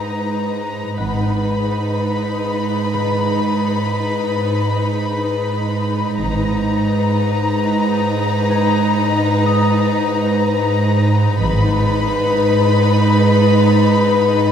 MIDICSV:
0, 0, Header, 1, 6, 480
1, 0, Start_track
1, 0, Tempo, 500000
1, 13938, End_track
2, 0, Start_track
2, 0, Title_t, "Violin section"
2, 0, Program_c, 0, 48
2, 0, Note_on_c, 0, 82, 22
2, 905, Note_off_c, 0, 82, 0
2, 956, Note_on_c, 0, 83, 28
2, 5920, Note_off_c, 0, 83, 0
2, 5956, Note_on_c, 0, 82, 38
2, 10925, Note_off_c, 0, 82, 0
2, 10943, Note_on_c, 0, 83, 47
2, 13938, Note_off_c, 0, 83, 0
2, 13938, End_track
3, 0, Start_track
3, 0, Title_t, "Harp"
3, 0, Program_c, 1, 46
3, 939, Note_on_c, 1, 78, 23
3, 2822, Note_on_c, 1, 71, 33
3, 4683, Note_off_c, 1, 78, 0
3, 6566, Note_off_c, 1, 71, 0
3, 8163, Note_on_c, 1, 80, 32
3, 9084, Note_on_c, 1, 87, 44
3, 10996, Note_off_c, 1, 80, 0
3, 12828, Note_off_c, 1, 87, 0
3, 13938, End_track
4, 0, Start_track
4, 0, Title_t, "Violin section"
4, 0, Program_c, 2, 48
4, 0, Note_on_c, 2, 63, 27
4, 0, Note_on_c, 2, 71, 27
4, 899, Note_off_c, 2, 71, 0
4, 901, Note_off_c, 2, 63, 0
4, 944, Note_on_c, 2, 71, 29
4, 949, Note_on_c, 2, 63, 32
4, 5914, Note_off_c, 2, 71, 0
4, 5917, Note_off_c, 2, 63, 0
4, 5941, Note_on_c, 2, 63, 46
4, 5942, Note_on_c, 2, 71, 41
4, 10917, Note_off_c, 2, 63, 0
4, 10918, Note_off_c, 2, 71, 0
4, 10937, Note_on_c, 2, 71, 53
4, 10938, Note_on_c, 2, 63, 51
4, 13938, Note_off_c, 2, 63, 0
4, 13938, Note_off_c, 2, 71, 0
4, 13938, End_track
5, 0, Start_track
5, 0, Title_t, "Cello section"
5, 0, Program_c, 3, 48
5, 0, Note_on_c, 3, 44, 28
5, 902, Note_off_c, 3, 44, 0
5, 941, Note_on_c, 3, 44, 31
5, 5913, Note_off_c, 3, 44, 0
5, 5955, Note_on_c, 3, 44, 45
5, 10924, Note_off_c, 3, 44, 0
5, 10952, Note_on_c, 3, 44, 53
5, 13938, Note_off_c, 3, 44, 0
5, 13938, End_track
6, 0, Start_track
6, 0, Title_t, "Double bass section"
6, 0, Program_c, 4, 48
6, 952, Note_on_c, 4, 32, 28
6, 1536, Note_off_c, 4, 32, 0
6, 5963, Note_on_c, 4, 32, 37
6, 6545, Note_off_c, 4, 32, 0
6, 10959, Note_on_c, 4, 32, 48
6, 11548, Note_off_c, 4, 32, 0
6, 13938, End_track
0, 0, End_of_file